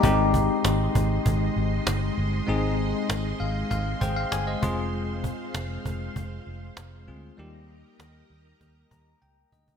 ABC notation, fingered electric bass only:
X:1
M:4/4
L:1/8
Q:1/4=98
K:Ab
V:1 name="Fingered electric bass" clef=bass
A,,,2 A,,, A,,, A,,, A,,, G,,, G,,, | A,,,2 A,,, A,,, A,,, A,,, G,,, F,,,- | F,,,2 F,,, F,,, F,,, F,,, F,,, =D,, | E,,2 E,, E,, E,, E,, D,, =D,, |]